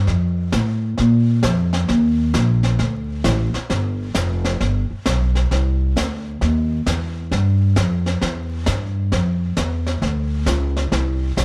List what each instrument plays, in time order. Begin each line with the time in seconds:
0.07 upright bass F2, brush sweep, snare
0.52 upright bass A2, snare, hi-hat pedal
0.98 upright bass A#2, brush sweep, snare
1.43 upright bass F2, snare, hi-hat pedal
1.73 snare
1.88 upright bass D#2, brush sweep, snare
2.34 upright bass A#1, snare, hi-hat pedal
2.63 snare
2.79 upright bass D2, brush sweep, snare
3.24 upright bass A1, snare, hi-hat pedal
3.54 muted upright bass stroke, snare
3.70 upright bass G1, brush sweep, snare
4.14 upright bass F1, snare, hi-hat pedal
4.44 snare
4.60 upright bass G1, brush sweep, snare
4.90 muted upright bass stroke
5.06 upright bass B1, snare, hi-hat pedal
5.35 snare
5.51 upright bass C2, brush sweep, snare
5.96 upright bass D2, snare, hi-hat pedal
6.41 upright bass D#2, brush sweep, snare
6.86 upright bass E2, snare, hi-hat pedal
7.31 upright bass G2, brush sweep, snare
7.76 upright bass F2, snare, hi-hat pedal
8.06 snare
8.21 upright bass E2, brush sweep, snare
8.66 upright bass G2, snare, hi-hat pedal
9.12 upright bass F2, brush sweep, snare
9.57 upright bass E2, snare, hi-hat pedal
9.87 snare
10.02 upright bass D2, brush sweep, snare
10.46 upright bass C#2, snare, hi-hat pedal
10.77 snare
10.92 upright bass C2, brush sweep, snare
11.37 upright bass B1, snare, hi-hat pedal